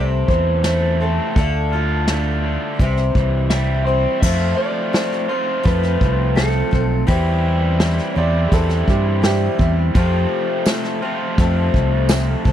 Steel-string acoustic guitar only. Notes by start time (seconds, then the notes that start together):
Already playing: C3 E3 A3 C4 E4 A4
0.65 A3 C4 E4 A4
1.00 A3 C4 E4 A4
1.37 D3 A3 D4 F4 A4
1.73 D4 F4 A4
2.08 A3 D4 F4 A4
2.80 C3 E3 G3 C4 E4 C5
3.51 G3 C4 E4 C5
3.87 G3 C4 E4 C5
4.23 F3 A3 C4 C5
4.93 A3 C4 C5
5.29 C4 C5
5.63 F3 A3 C4
6.35 A3 C4 C5
6.71 C4 C5
7.07 E3 G3 C4 E4 C5
7.80 G3 C4 E4 C5
8.16 C4 E4 C5
8.52 E3 G3 C4 E4 C5
9.22 G3 C4 E4 C5
9.59 C4 E4 C5
9.95 F3 A3 C4 A4
10.66 A3 C4 A4
11.02 C4 A4
11.39 F3 A3 C4 A4
12.09 A3 C4 A4
12.45 C4 A4